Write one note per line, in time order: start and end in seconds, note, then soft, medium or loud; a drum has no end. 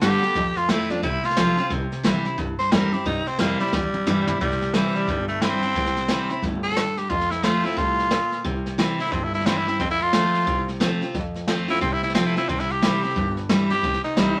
0.01 0.22 G2 medium
0.01 0.22 D3 medium
0.01 0.22 G3 loud
0.01 0.22 B3 medium
0.01 0.59 G4 loud
0.01 0.22 G4 medium
0.01 snare loud
0.01 hi-hat pedal medium
0.22 0.36 B3 medium
0.22 0.35 G4 medium
0.22 snare soft
0.35 0.56 F2 medium
0.35 1.01 F2 medium
0.35 kick loud
0.35 snare soft
0.56 0.72 F4 loud
0.56 muted upright bass stroke medium
0.56 snare soft
0.69 0.89 E2 loud
0.69 0.89 F3 medium
0.69 0.90 A3 medium
0.69 0.90 C4 medium
0.69 0.92 E4 medium
0.69 0.89 F4 loud
0.69 snare loud
0.69 hi-hat pedal loud
0.90 1.04 C4 soft
0.90 1.02 D4 medium
0.90 1.03 F4 medium
0.90 snare soft
1.02 1.23 C2 medium
1.02 1.68 C3 medium
1.02 1.26 E4 medium
1.02 kick loud
1.02 snare soft
1.24 1.70 F4 loud
1.24 snare soft
1.30 snare soft
1.37 1.57 B1 medium
1.37 1.57 F3 medium
1.37 1.57 A3 medium
1.37 1.57 C4 loud
1.37 1.56 F4 loud
1.37 snare loud
1.37 hi-hat pedal medium
1.57 1.71 C4 medium
1.57 1.70 F4 medium
1.57 muted upright bass stroke medium
1.57 snare soft
1.70 1.91 C2 medium
1.70 2.35 C3 medium
1.70 kick loud
1.70 snare soft
1.92 snare soft
2.04 2.24 A#1 medium
2.04 2.24 E3 medium
2.04 2.24 G3 medium
2.04 2.25 C4 loud
2.04 2.24 E4 loud
2.04 snare loud
2.04 hi-hat pedal medium
2.25 2.38 C4 medium
2.25 2.37 E4 medium
2.25 snare soft
2.38 2.58 C2 medium
2.38 3.03 G2 medium
2.38 kick loud
2.38 snare soft
2.59 2.74 C5 loud
2.59 muted upright bass stroke medium
2.59 snare soft
2.71 2.92 E2 medium
2.71 2.92 E3 medium
2.71 2.92 G3 loud
2.71 2.92 C4 loud
2.71 2.91 E4 medium
2.71 2.94 A#4 medium
2.71 snare loud
2.71 hi-hat pedal medium
2.92 3.06 C4 medium
2.92 3.05 E4 medium
2.92 3.05 G4 medium
2.92 muted upright bass stroke medium
2.92 snare soft
3.05 3.26 G2 medium
3.05 3.71 C3 medium
3.05 3.29 D#4 medium
3.05 kick loud
3.05 snare soft
3.26 3.39 C4 loud
3.26 snare soft
3.39 3.60 F2 loud
3.39 3.59 E3 medium
3.39 3.60 G3 medium
3.39 3.60 A#3 loud
3.39 3.60 C4 medium
3.39 3.59 E4 medium
3.39 snare loud
3.39 hi-hat pedal medium
3.60 4.38 G3 loud
3.60 3.73 C4 medium
3.60 3.73 E4 medium
3.60 snare soft
3.67 snare soft
3.72 3.93 E2 medium
3.72 4.38 G2 medium
3.72 kick loud
3.72 snare medium
3.94 muted upright bass stroke medium
3.94 high tom medium
4.07 4.27 G2 medium
4.07 4.27 E3 medium
4.07 4.27 G3 medium
4.07 4.27 C4 medium
4.07 4.26 E4 medium
4.07 hi-hat pedal medium
4.07 mid tom medium
4.27 4.41 C4 medium
4.27 4.40 E4 medium
4.27 muted upright bass stroke medium
4.27 floor tom medium
4.40 4.79 C2 medium
4.40 5.06 C3 medium
4.40 4.76 G3 loud
4.40 kick loud
4.40 snare soft
4.51 snare soft
4.61 snare soft
4.74 4.96 E3 medium
4.74 5.07 E3 medium
4.74 5.07 G3 loud
4.74 5.07 C4 medium
4.74 5.08 E4 medium
4.74 snare loud
4.74 hi-hat pedal medium
4.95 5.27 G3 medium
4.95 muted upright bass stroke medium
4.95 snare soft
5.07 5.46 G1 medium
5.07 5.73 G2 medium
5.07 kick loud
5.07 snare soft
5.28 5.43 A3 medium
5.28 snare soft
5.42 5.62 E3 medium
5.42 5.62 G3 medium
5.42 6.40 C4 loud
5.42 5.62 C4 medium
5.42 5.62 E4 medium
5.42 snare loud
5.42 hi-hat pedal medium
5.62 5.76 C4 medium
5.62 5.75 E4 medium
5.62 muted upright bass stroke medium
5.62 snare soft
5.75 6.13 C2 medium
5.75 6.41 C3 medium
5.75 kick loud
5.75 snare soft
5.86 snare soft
5.96 snare soft
6.08 6.29 E3 medium
6.08 6.30 G3 medium
6.08 6.30 C4 medium
6.08 6.29 E4 medium
6.08 snare loud
6.08 hi-hat pedal medium
6.30 6.43 C4 soft
6.30 6.43 E4 medium
6.30 muted upright bass stroke medium
6.30 snare soft
6.42 6.81 G1 medium
6.42 6.76 A2 medium
6.42 kick loud
6.42 snare soft
6.63 6.99 A4 loud
6.63 snare soft
6.70 snare soft
6.77 7.09 G2 medium
6.77 snare loud
6.77 hi-hat pedal medium
6.97 7.12 G4 medium
6.97 muted upright bass stroke medium
6.97 snare soft
7.10 7.48 F2 medium
7.10 7.75 F2 medium
7.10 7.32 F4 loud
7.10 kick loud
7.10 snare soft
7.20 snare soft
7.31 7.45 E4 medium
7.31 snare soft
7.43 7.64 F3 medium
7.43 7.64 A3 medium
7.43 7.64 C4 medium
7.43 7.66 F4 loud
7.43 7.63 F4 loud
7.43 snare loud
7.43 hi-hat pedal medium
7.64 7.77 C4 medium
7.64 7.79 E4 medium
7.64 7.77 F4 medium
7.64 muted upright bass stroke medium
7.64 snare soft
7.71 snare soft
7.76 8.16 C2 medium
7.76 8.09 A2 medium
7.76 8.43 F4 loud
7.76 kick loud
7.76 snare soft
7.99 snare soft
8.11 8.43 A#2 medium
8.11 snare loud
8.11 hi-hat pedal medium
8.31 muted upright bass stroke medium
8.31 snare soft
8.45 8.83 C2 medium
8.45 9.10 C3 medium
8.45 kick loud
8.45 snare soft
8.66 snare soft
8.78 8.98 E3 medium
8.78 8.99 G3 medium
8.78 8.99 C4 medium
8.78 8.98 E4 medium
8.78 snare loud
8.78 hi-hat pedal medium
8.99 9.12 C4 medium
8.99 9.12 E4 medium
8.99 9.13 E4 loud
8.99 muted upright bass stroke medium
8.99 snare soft
9.06 snare soft
9.12 9.50 G1 medium
9.12 9.77 G2 medium
9.12 9.25 C4 medium
9.12 kick loud
9.12 snare soft
9.24 9.34 E4 medium
9.33 9.48 E4 medium
9.33 snare soft
9.40 snare soft
9.46 9.66 E3 medium
9.46 9.66 G3 medium
9.46 9.59 C4 loud
9.46 9.67 C4 medium
9.46 9.66 E4 medium
9.46 snare loud
9.46 hi-hat pedal medium
9.57 9.68 E4 loud
9.67 9.80 C4 medium
9.67 9.79 E4 medium
9.67 muted upright bass stroke medium
9.67 snare soft
9.79 10.18 F2 medium
9.79 10.45 F2 medium
9.79 9.90 C4 medium
9.79 kick loud
9.79 snare soft
9.90 10.03 E4 loud
9.90 snare soft
10.00 10.67 F4 loud
10.00 snare soft
10.13 10.46 F3 medium
10.13 10.46 A3 medium
10.13 10.46 C4 medium
10.13 10.46 F4 medium
10.13 snare loud
10.13 hi-hat pedal medium
10.34 muted upright bass stroke medium
10.34 snare soft
10.41 snare soft
10.47 10.85 C2 medium
10.47 11.12 C3 medium
10.47 kick loud
10.47 snare soft
10.68 snare soft
10.80 11.00 F3 medium
10.80 11.01 A3 medium
10.80 11.01 C4 loud
10.80 11.00 F4 loud
10.80 snare loud
10.80 hi-hat pedal medium
11.01 11.14 C4 medium
11.01 11.14 F4 medium
11.01 muted upright bass stroke medium
11.01 snare soft
11.14 11.53 F2 medium
11.14 11.79 F2 medium
11.14 kick loud
11.14 snare soft
11.35 snare soft
11.47 11.68 F3 medium
11.47 11.68 A3 medium
11.47 11.68 C4 medium
11.47 11.67 F4 loud
11.47 snare loud
11.47 hi-hat pedal medium
11.68 11.81 C4 medium
11.68 11.81 E4 loud
11.68 11.81 F4 medium
11.68 muted upright bass stroke medium
11.68 snare soft
11.75 snare soft
11.81 12.20 C2 medium
11.81 12.46 C3 medium
11.81 11.94 C4 medium
11.81 kick loud
11.81 snare soft
11.93 12.03 E4 loud
12.02 12.14 E4 medium
12.02 snare soft
12.09 snare soft
12.15 12.35 F3 medium
12.15 12.35 A3 medium
12.15 12.25 C4 loud
12.15 12.36 C4 medium
12.15 12.35 F4 loud
12.15 snare loud
12.15 hi-hat pedal medium
12.26 12.37 E4 medium
12.36 12.49 C4 soft
12.36 12.50 E4 medium
12.36 12.48 F4 medium
12.36 muted upright bass stroke medium
12.36 snare soft
12.49 12.87 C2 medium
12.49 13.14 C3 medium
12.49 12.61 C4 loud
12.49 kick loud
12.49 snare soft
12.59 12.73 E4 loud
12.59 snare soft
12.70 13.37 G4 loud
12.70 snare soft
12.82 13.02 E3 medium
12.82 13.03 G3 medium
12.82 13.03 C4 medium
12.82 13.02 E4 medium
12.82 snare loud
12.82 hi-hat pedal loud
13.03 13.16 C4 medium
13.03 13.16 E4 medium
13.03 muted upright bass stroke medium
13.03 snare soft
13.10 snare soft
13.16 13.54 G1 medium
13.16 13.81 G2 medium
13.16 kick loud
13.16 snare soft
13.37 snare soft
13.49 13.70 E3 medium
13.49 13.70 G3 medium
13.49 13.70 C4 medium
13.49 13.70 E4 loud
13.49 snare loud
13.49 hi-hat pedal medium
13.70 13.84 C4 medium
13.70 13.83 E4 medium
13.70 14.03 G4 loud
13.70 muted upright bass stroke medium
13.70 snare soft
13.83 13.98 C2 medium
13.83 14.40 C3 medium
13.83 kick loud
13.83 snare soft
13.93 snare soft
14.04 14.40 D#4 medium
14.04 snare soft
14.17 14.35 C2 medium
14.17 14.37 E3 medium
14.17 14.37 G3 loud
14.17 14.37 C4 medium
14.17 14.37 E4 medium
14.17 snare loud
14.17 hi-hat pedal medium